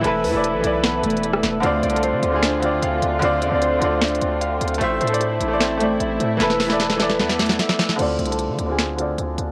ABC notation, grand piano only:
X:1
M:4/4
L:1/16
Q:1/4=151
K:Ddor
V:1 name="Grand piano"
[E,EAB]2 z [E,EAd]2 z [E,EAd]6 z4 | [D,CFd]2 z [D,CFA]3 z [D,CF^G]2 z [D,CFd]4 z2 | [D,CFd]2 z [D,CFd]2 z [D,CFd]6 z4 | [A,Ace]2 z [A,Acd]3 z [A,Acd]2 z [A,Acd]4 z2 |
[E,EAB]2 z [E,EAd]2 z [E,EAd]6 z4 | [D,CFd]2 z [D,CFA]3 z [D,CF^G]2 z [D,CFd]4 z2 |]